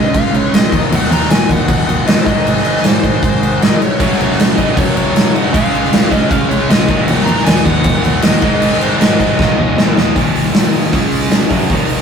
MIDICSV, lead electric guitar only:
0, 0, Header, 1, 2, 480
1, 0, Start_track
1, 0, Tempo, 385356
1, 1142, Time_signature, 4, 2, 24, 8
1, 14968, End_track
2, 0, Start_track
2, 0, Title_t, "Lead electric guitar"
2, 0, Program_c, 0, 29
2, 0, Note_on_c, 0, 75, 96
2, 177, Note_on_c, 0, 77, 108
2, 186, Note_off_c, 0, 75, 0
2, 428, Note_off_c, 0, 77, 0
2, 443, Note_on_c, 0, 73, 91
2, 675, Note_off_c, 0, 73, 0
2, 675, Note_on_c, 0, 75, 97
2, 1028, Note_off_c, 0, 75, 0
2, 1187, Note_on_c, 0, 78, 110
2, 1389, Note_off_c, 0, 78, 0
2, 1408, Note_on_c, 0, 82, 110
2, 1620, Note_off_c, 0, 82, 0
2, 1625, Note_on_c, 0, 80, 103
2, 1870, Note_off_c, 0, 80, 0
2, 1896, Note_on_c, 0, 78, 106
2, 2315, Note_off_c, 0, 78, 0
2, 2330, Note_on_c, 0, 78, 102
2, 2575, Note_off_c, 0, 78, 0
2, 2575, Note_on_c, 0, 75, 97
2, 2735, Note_off_c, 0, 75, 0
2, 2743, Note_on_c, 0, 72, 75
2, 2805, Note_off_c, 0, 72, 0
2, 2810, Note_on_c, 0, 75, 97
2, 3308, Note_off_c, 0, 75, 0
2, 3323, Note_on_c, 0, 75, 91
2, 3534, Note_off_c, 0, 75, 0
2, 3581, Note_on_c, 0, 72, 95
2, 4531, Note_off_c, 0, 72, 0
2, 4536, Note_on_c, 0, 75, 90
2, 4741, Note_off_c, 0, 75, 0
2, 4761, Note_on_c, 0, 73, 93
2, 5419, Note_off_c, 0, 73, 0
2, 5699, Note_on_c, 0, 75, 82
2, 5921, Note_off_c, 0, 75, 0
2, 5950, Note_on_c, 0, 73, 98
2, 6168, Note_off_c, 0, 73, 0
2, 6183, Note_on_c, 0, 73, 102
2, 6662, Note_on_c, 0, 78, 95
2, 6675, Note_off_c, 0, 73, 0
2, 6899, Note_off_c, 0, 78, 0
2, 6903, Note_on_c, 0, 77, 104
2, 7616, Note_off_c, 0, 77, 0
2, 7621, Note_on_c, 0, 75, 92
2, 7845, Note_off_c, 0, 75, 0
2, 7845, Note_on_c, 0, 77, 105
2, 8086, Note_off_c, 0, 77, 0
2, 8091, Note_on_c, 0, 73, 87
2, 8332, Note_off_c, 0, 73, 0
2, 8332, Note_on_c, 0, 75, 85
2, 8696, Note_off_c, 0, 75, 0
2, 8812, Note_on_c, 0, 78, 108
2, 9019, Note_off_c, 0, 78, 0
2, 9024, Note_on_c, 0, 82, 92
2, 9274, Note_off_c, 0, 82, 0
2, 9274, Note_on_c, 0, 80, 95
2, 9520, Note_off_c, 0, 80, 0
2, 9520, Note_on_c, 0, 78, 96
2, 9984, Note_off_c, 0, 78, 0
2, 9999, Note_on_c, 0, 78, 90
2, 10250, Note_off_c, 0, 78, 0
2, 10250, Note_on_c, 0, 75, 93
2, 10480, Note_off_c, 0, 75, 0
2, 10495, Note_on_c, 0, 75, 91
2, 10944, Note_off_c, 0, 75, 0
2, 10976, Note_on_c, 0, 72, 89
2, 11218, Note_on_c, 0, 75, 80
2, 11226, Note_off_c, 0, 72, 0
2, 12371, Note_off_c, 0, 75, 0
2, 14968, End_track
0, 0, End_of_file